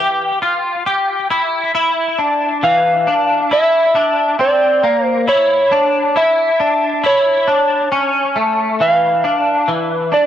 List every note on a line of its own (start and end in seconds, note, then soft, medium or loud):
0.00 0.42 G4 medium
0.00 0.83 F5 loud
0.42 0.86 F4 medium
0.86 1.30 G4 medium
1.30 1.73 E4 medium
1.75 2.19 E4 medium
2.18 2.63 D4 medium
2.63 3.07 E3 medium
2.63 3.52 F5 loud
3.07 3.51 D4 medium
3.51 3.95 E4 medium
3.51 4.43 E5 loud
3.95 4.39 D4 medium
4.39 4.83 C4 medium
4.39 5.06 D5 medium
4.83 5.28 A#3 medium
5.06 5.28 C5 medium
5.28 5.72 E4 medium
5.28 6.19 C#5 loud
5.72 6.16 D4 medium
6.16 6.60 E4 medium
6.16 7.07 E5 medium
6.60 7.04 D4 medium
7.04 7.48 E4 medium
7.04 8.33 C#5 medium
7.47 7.91 D4 medium
7.92 8.36 C#4 medium
8.36 8.80 A3 medium
8.80 9.24 E3 medium
8.80 10.17 F5 loud
9.24 9.68 D4 medium
9.68 10.12 E3 medium
10.12 10.26 D4 medium
10.12 10.26 D5 medium